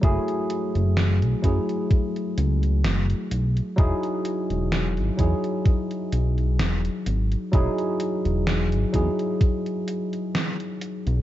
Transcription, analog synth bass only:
X:1
M:4/4
L:1/16
Q:"Swing 16ths" 1/4=64
K:E
V:1 name="Analog synth bass" clef=bass
F,,, z2 F,,,2 B,,, F,, z3 C,,2 F,,, z B,,, z | E,,, z2 E,,,2 G,,, E,, z3 B,,,2 E,,, z G,,, z | E,,, z2 E,,,2 G,,, E,, z8 B,,, |]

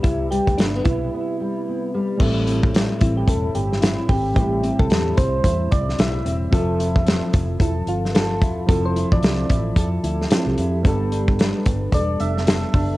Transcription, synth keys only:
X:1
M:4/4
L:1/16
Q:"Swing 16ths" 1/4=111
K:Am
V:1 name="Synth keys"
E2 G2 D2 E8 z2 | z6 E G A2 G2 E E G2 | G3 A3 c2 c2 d2 e4- | e6 z2 E2 F6 |
A c2 d6 z6 z | z8 d2 e6 |]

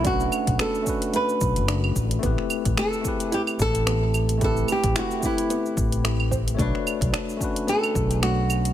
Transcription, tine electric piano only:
X:1
M:4/4
L:1/8
Q:"Swing 16ths" 1/4=110
K:Bphr
V:1 name="Tine electric piano"
[A,^CDFB]3 [A,CDFB]4- [A,CDFB] | [A,CEGB]3 [A,CEGB]4- [A,CEGB] | [A,CEGB]3 [A,CEGB]4- [A,CEGB] | [A,DFB^c]3 [A,^CDFB]4- [A,CDFB] |]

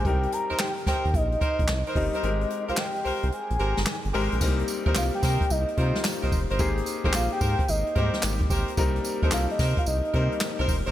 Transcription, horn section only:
X:1
M:4/4
L:1/16
Q:"Swing 16ths" 1/4=110
K:Cm
V:1 name="Horn section"
z3 [EBc] z2 [EBc] z3 [EBc] z2 [EBc] z [EBc] | z3 [GBc] z2 [GBc] z3 [GBc] z3 [GBc] z | z3 [EBc] z2 [EBc] z3 [EBc] z2 [EBc] z [EBc] | z3 [GBc] z2 [GBc] z3 [GBc] z3 [GBc] z |
z3 [EBc] z2 [EBc] z3 [EBc] z2 [EBc] z [EBc] |]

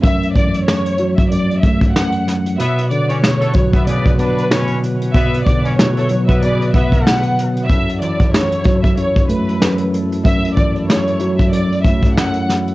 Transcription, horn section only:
X:1
M:4/4
L:1/16
Q:"Swing 16ths" 1/4=94
K:Bm
V:1 name="Horn section"
z16 | [B,B]2 z [Cc] z [A,A] z [B,B] [C,B]2 [Dd]2 [Cc]2 z2 | [B,B]2 z [Cc] z [A,A] z [B,B] [C,B]2 [B,B]3 z3 | z16 |
z16 |]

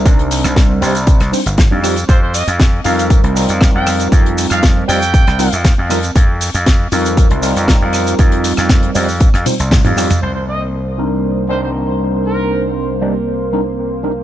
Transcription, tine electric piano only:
X:1
M:4/4
L:1/16
Q:1/4=118
K:Cm
V:1 name="Tine electric piano"
[G,CDEB]6 [G,CDEG] z3 [G,CDEc] z2 [G,CDEG] [G,CEFG] z | z6 [G,CEFB]4 [G,CEFB]6- | [G,CEFB]6 [G,CEFG] z3 [G,CEFB] z3 [G,CEFB] z | z6 [G,CEFB]4 [G,CEFB]6- |
[G,CEFB]6 [G,CEFG] z3 [G,CEFc] z2 [G,CEFG] [G,CEFG] z | z6 [G,CDEB]4 [G,CDEB]6- | [G,CDEB]6 [G,CDEG] z3 [G,CDEB] z3 [G,CDEB] z |]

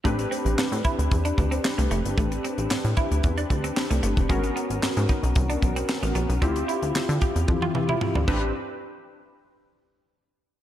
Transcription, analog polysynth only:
X:1
M:4/4
L:1/8
Q:1/4=113
K:Am
V:1 name="Analog polysynth"
[CDGB]8- | [CDGB]8 | [B,^C^F^A]8 | [CEFG]6- [CEFG] [CDGB] |
z8 |]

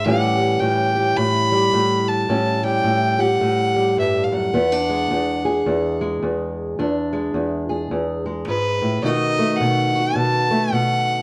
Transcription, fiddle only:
X:1
M:4/4
L:1/16
Q:"Swing" 1/4=107
K:A
V:1 name="Fiddle"
f4 =g4 b6 a2- | a2 =g4 f6 e3/2 =f/2 ^f2- | f8- f2 z6 | z12 B4 |
^d4 f4 a4 f4 |]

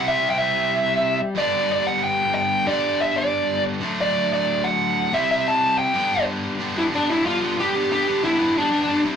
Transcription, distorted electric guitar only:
X:1
M:4/4
L:1/8
Q:1/4=184
K:G
V:1 name="Distorted electric guitar" clef=bass
[C,G,CE]6- [C,G,CE] z | [G,,D,G,B,D]8 | [G,,D,G,B,D]6- [G,,D,G,B,D] [D,F,A,D]- | [D,F,A,D]6- [D,F,A,D] [C,G,CE]- |
[C,G,CE]4 [G,,D,G,B,D]4 | [K:Gmix] [G,,D,G,B,D] [G,,D,G,B,D] [G,,D,G,B,D] [G,,D,G,B,D] [G,,D,G,B,D] [G,,D,G,B,D] [G,,D,G,B,D] [G,,D,G,B,D] | [G,,D,G,B,D] [G,,D,G,B,D] [G,,D,G,B,D] [G,,D,G,B,D] [G,,D,G,B,D] [G,,D,G,B,D] [G,,D,G,B,D] [C,G,CE] |]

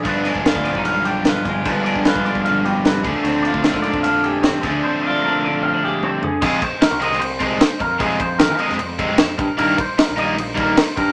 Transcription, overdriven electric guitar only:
X:1
M:4/4
L:1/8
Q:1/4=151
K:Fdor
V:1 name="Overdriven electric guitar" clef=bass
[G,,D,F,=B,D]8 | [G,,D,F,=B,D]6- [G,,D,F,B,D] [D,F,=A,D]- | [D,F,=A,D]6- [D,F,A,D] [D,F,A,D]- | [D,F,=A,D]6- [D,F,A,D] z |
[C,F,A,C] z2 [C,F,A,C] z [C,F,A,C] z2 | [C,F,A,C] z2 [C,F,A,C] z [C,F,A,C] z2 | [E,G,B,E] z2 [E,G,B,E] z [E,G,B,E] z2 |]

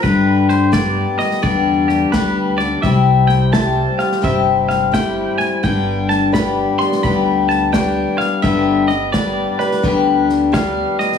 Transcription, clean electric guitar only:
X:1
M:4/4
L:1/8
Q:"Swing" 1/4=86
K:Gmix
V:1 name="Clean electric guitar"
B c d _e d G B d | e g a f e f g _a | g a b c' b a g f | e _e d B2 z f e |]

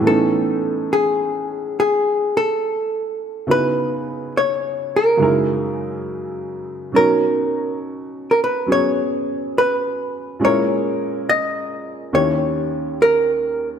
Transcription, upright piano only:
X:1
M:4/4
L:1/8
Q:"Swing" 1/4=70
K:B
V:1 name="Upright piano"
[=A,,E,=A,B,CD]8 | [C,B,DEF]4 [F,,C,G,DEA]4 | [B,,F,CDc]4 [F,B,CG]4 | [A,,G,CEA]4 [D,,D,CE=G]4 |]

